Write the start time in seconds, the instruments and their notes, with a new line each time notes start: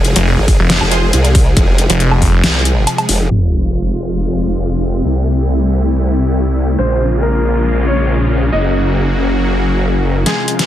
Already playing: wobble bass F1, supersaw synth C3 F3 G#3 G#4
0.05 closed hi-hat
0.16 detuned saw bass F1, closed hi-hat
0.38 wobble bass G#1
0.48 kick, open hi-hat
0.59 detuned saw bass F1
0.70 snare, closed hi-hat
0.81 wobble bass F1, low woodblock
0.91 synth stab F4 G#4 C5, closed hi-hat
1.13 wobble bass C2, closed hi-hat
1.25 closed hi-hat
1.35 kick, open hi-hat
1.57 wobble bass F1, kick, closed hi-hat
1.78 closed hi-hat
1.90 detuned saw bass F1, closed hi-hat
2.00 closed hi-hat
2.11 low woodblock
2.22 detuned saw bass F1, kick, open hi-hat
2.44 wobble bass C2, snare, closed hi-hat
2.65 closed hi-hat
2.87 closed hi-hat, low woodblock
2.98 closed hi-hat, low woodblock
3.09 wobble bass F1, open hi-hat
3.30 wobble bass F1, supersaw synth C3 F3 G#3 F4, ambient pad C4, sub drop
3.54 ambient pad G#4
3.97 ambient pad F5
5.04 wobble bass C2, supersaw synth G3 A3 E4
5.51 ambient pad G4
5.73 ambient pad A5
6.78 wobble bass A#1, supersaw synth C#3 G#3 A#3 F4, ambient pad C#4, grand piano C5
7.21 grand piano A#4, ambient pad F5
7.38 ambient pad G#4
7.57 ambient pad A#5
7.87 grand piano C#5
8.52 wobble bass F#1, supersaw synth F#3 A#3 F#4, grand piano D#5
8.67 ambient pad A#4
8.81 ambient pad F#5
10.26 supersaw synth C3 F3 G#3 F4, ambient pad G#3, grand piano G#3 G#4, snare, closed hi-hat, riser
10.48 closed hi-hat
10.59 snare, closed hi-hat